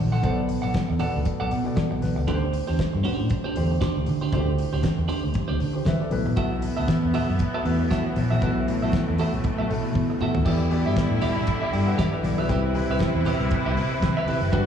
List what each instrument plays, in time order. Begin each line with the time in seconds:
Already playing: grand piano D3 D4 F#4 C5 D5
0.00 fingered electric bass A#1
0.12 clean electric guitar A4 C5 F#5
0.22 fingered electric bass B1, grand piano B2 B3 A4 C5, clean electric guitar A4 D5 F#5, kick, closed hi-hat, muted conga
0.30 grand piano D5
0.37 muted clean electric guitar stroke
0.48 muted clean electric guitar stroke, open hi-hat, muted conga
0.62 fingered electric bass B1, clean electric guitar A4 D5 F#5
0.74 kick, snare, closed hi-hat, high conga
0.89 fingered electric bass E2, muted clean electric guitar stroke
0.99 grand piano B2 B3 A4 D5, clean electric guitar A4 D5 F#5, open hi-hat, muted conga, low conga
1.13 fingered electric bass D2, muted clean electric guitar stroke
1.25 muted clean electric guitar stroke, kick, closed hi-hat
1.40 fingered electric bass B1, clean electric guitar A4 D5 F#5
1.51 fingered electric bass B2, grand piano F#5, muted clean electric guitar stroke, open hi-hat
1.65 grand piano B2 B3 A4 D5, muted clean electric guitar stroke
1.75 grand piano D5, muted clean electric guitar stroke, kick, snare, closed hi-hat, high conga
1.91 fingered electric bass B1, muted clean electric guitar stroke
2.02 fingered electric bass B1, grand piano B4, snare, open hi-hat, high conga
2.16 fingered electric bass C#2, muted clean electric guitar stroke
2.27 fingered electric bass D2, grand piano D3 A3 G4 B4, clean electric guitar D4 G4 C5, kick, closed hi-hat, muted conga
2.34 grand piano C5
2.42 muted clean electric guitar stroke
2.53 muted clean electric guitar stroke, open hi-hat
2.67 fingered electric bass E2, clean electric guitar D4 G4 C5
2.79 kick, snare, closed hi-hat, high conga
2.93 fingered electric bass G2, muted clean electric guitar stroke
3.04 clean electric guitar D4 G4 C5, open hi-hat, muted conga, low conga
3.18 fingered electric bass A2, muted clean electric guitar stroke
3.30 muted clean electric guitar stroke, kick, closed hi-hat
3.44 clean electric guitar D4 G4 C5
3.55 fingered electric bass E2, grand piano D3 A3 G4 C5, muted clean electric guitar stroke, open hi-hat
3.71 muted clean electric guitar stroke
3.81 clean electric guitar D4 G4 C5, kick, snare, closed hi-hat, high conga
3.96 fingered electric bass D2, muted clean electric guitar stroke
4.06 fingered electric bass D3, muted clean electric guitar stroke, open hi-hat, high conga
4.21 clean electric guitar D4 G4 C5
4.32 fingered electric bass D2, grand piano D3 A3 F#4 C5, clean electric guitar D4 G4 C5, kick, closed hi-hat, muted conga
4.39 grand piano G4
4.47 muted clean electric guitar stroke
4.58 muted clean electric guitar stroke, open hi-hat
4.73 fingered electric bass D2, clean electric guitar D4 G4 C5
4.83 kick, snare, closed hi-hat, high conga
4.98 fingered electric bass E2, muted clean electric guitar stroke
5.08 clean electric guitar D4 G4 C5, open hi-hat, muted conga
5.24 fingered electric bass D2, muted clean electric guitar stroke
5.34 muted clean electric guitar stroke, kick, closed hi-hat
5.48 fingered electric bass D2, clean electric guitar D4 G4 C5
5.59 fingered electric bass D3, muted clean electric guitar stroke, open hi-hat
5.73 grand piano G4 C5, muted clean electric guitar stroke
5.85 fingered electric bass D3, grand piano B4 E5, muted clean electric guitar stroke, kick, snare, closed hi-hat, high conga
5.99 grand piano A4 D5, muted clean electric guitar stroke
6.11 fingered electric bass B1, grand piano B2 A3 E4 B4, open hi-hat, high conga
6.26 fingered electric bass A#1, muted clean electric guitar stroke
6.37 fingered electric bass B1, string section A2 E3 B3, clean electric guitar F#4 A4 E5, kick, closed hi-hat, muted conga
6.51 muted clean electric guitar stroke
6.62 muted clean electric guitar stroke, open hi-hat, muted conga
6.77 fingered electric bass D2, clean electric guitar F#4 A4 E5
6.88 kick, snare, closed hi-hat, high conga
7.03 fingered electric bass E2, muted clean electric guitar stroke
7.14 clean electric guitar F#4 A4 E5, open hi-hat, muted conga, low conga
7.28 fingered electric bass F#2, muted clean electric guitar stroke
7.39 muted clean electric guitar stroke, kick, closed hi-hat
7.54 clean electric guitar F#4 A4 E5
7.64 fingered electric bass E2, grand piano B2 A3 E4 B4, muted clean electric guitar stroke, open hi-hat
7.80 muted clean electric guitar stroke
7.90 clean electric guitar F#4 A4 E5, kick, snare, closed hi-hat, high conga
8.05 muted clean electric guitar stroke
8.16 fingered electric bass A#1, muted clean electric guitar stroke, open hi-hat, high conga
8.30 clean electric guitar F#4 A4 E5
8.41 fingered electric bass B1, grand piano B2 A3 E4 B4, string section A3, clean electric guitar F#4 A4 E5, kick, closed hi-hat, muted conga
8.57 muted clean electric guitar stroke
8.68 muted clean electric guitar stroke, open hi-hat
8.82 fingered electric bass B1, clean electric guitar F#4 A4 E5
8.92 kick, snare, closed hi-hat, high conga
9.09 fingered electric bass E2, muted clean electric guitar stroke
9.18 clean electric guitar F#4 A4 E5, open hi-hat, muted conga
9.33 fingered electric bass B1, muted clean electric guitar stroke
9.44 muted clean electric guitar stroke, kick, closed hi-hat
9.58 fingered electric bass B1, clean electric guitar F#4 A4 E5
9.68 grand piano B2 A3 E4 A4, fingered electric bass B2, muted clean electric guitar stroke, open hi-hat
9.84 muted clean electric guitar stroke
9.94 fingered electric bass B2, kick, high tom, high conga
10.10 muted clean electric guitar stroke
10.20 fingered electric bass B2, clean electric guitar F#4 A4 E5, mid tom, high conga
10.35 fingered electric bass D#2, muted clean electric guitar stroke, floor tom
10.44 fingered electric bass E2, string section D3 G3 E4, grand piano E3 B3 G4 D5, clean electric guitar G4 D5 E5, kick, crash, muted conga
10.60 muted clean electric guitar stroke
10.70 grand piano E3 B3 F#4 D5, muted clean electric guitar stroke, open hi-hat
10.77 grand piano G4
10.86 fingered electric bass G2, clean electric guitar G4 D5 E5
10.96 kick, snare, closed hi-hat, high conga
11.11 fingered electric bass A2, muted clean electric guitar stroke
11.21 clean electric guitar G4 D5 E5, open hi-hat, muted conga, low conga
11.36 fingered electric bass B2, muted clean electric guitar stroke
11.47 muted clean electric guitar stroke, kick, closed hi-hat
11.62 clean electric guitar G4 D5 E5
11.72 fingered electric bass G2, grand piano D5 G5, muted clean electric guitar stroke, open hi-hat
11.87 grand piano B4 F#5, muted clean electric guitar stroke
11.97 clean electric guitar G4 D5 E5, kick, snare, closed hi-hat, high conga
12.12 grand piano B4 E5, muted clean electric guitar stroke
12.23 fingered electric bass B1, grand piano A4 D5, muted clean electric guitar stroke, snare, open hi-hat, high conga
12.38 grand piano F#4 B4, clean electric guitar G4 D5 E5
12.48 fingered electric bass C2, grand piano C3 C4 E4 B4, string section C3 E4 B4, clean electric guitar G4 B4 E5, kick, closed hi-hat, muted conga
12.65 muted clean electric guitar stroke
12.74 grand piano C3 C4 E4 B4, muted clean electric guitar stroke, open hi-hat, muted conga
12.89 fingered electric bass C2, clean electric guitar G4 B4 E5
12.99 kick, snare, closed hi-hat, high conga
13.15 fingered electric bass E2, muted clean electric guitar stroke
13.25 clean electric guitar G4 B4 E5, open hi-hat, muted conga, low conga
13.40 fingered electric bass C2, muted clean electric guitar stroke
13.51 muted clean electric guitar stroke, kick, closed hi-hat
13.66 fingered electric bass C2, clean electric guitar G4 B4 E5
13.77 fingered electric bass C3, muted clean electric guitar stroke, open hi-hat
13.92 muted clean electric guitar stroke
14.00 fingered electric bass C3, muted clean electric guitar stroke, kick, snare, closed hi-hat, high conga
14.17 clean electric guitar G4 B4 E5
14.26 grand piano C3 C4 E4 B4, fingered electric bass C3, clean electric guitar G4 B4 E5, open hi-hat, high conga
14.42 fingered electric bass F#1, muted clean electric guitar stroke
14.51 fingered electric bass G1, grand piano G3 D4 F#4 B4, string section G3 F#4, clean electric guitar D4 F#4 B4, kick, closed hi-hat, muted conga